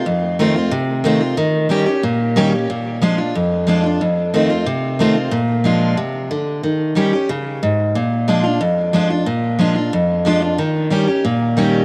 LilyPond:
\new Staff \with { instrumentName = "Steel-string acoustic guitar" } { \time 4/4 \key bes \mixolydian \tempo 4 = 182 << { r4 <ees a c' f'>8 <c' f'>8 r4 <ees a c' f'>8 <c' f'>8 | r4 <ees g des' g'>8 <des' g'>8 r4 <ees g des' g'>8 <des' g'>8 | r4 <f aes d' f'>8 <d' f'>8 r4 <f aes d' f'>8 <d' f'>8 | r4 <ees a c' f'>8 <c' f'>8 r4 <ees a c' f'>8 <c' f'>8 |
r4 <f aes d' f'>4 r2 | r4 <ees g des' g'>8 <des' g'>8 r2 | r4 <f aes d' f'>8 <d' f'>8 r4 <f aes d' f'>8 <d' f'>8 | r4 <f aes d' f'>8 <d' f'>8 r4 <f aes d' f'>8 <d' f'>8 |
r4 <ees g des' g'>8 <des' g'>8 r4 <ees g des' g'>4 | } \\ { f,2 c2 | ees2 bes,2 | bes,2 f,2 | f,2 c2 |
bes,2 c4 d4 | ees2 des4 aes,4 | bes,2 f,2 | bes,2 f,2 |
ees2 bes,2 | } >> }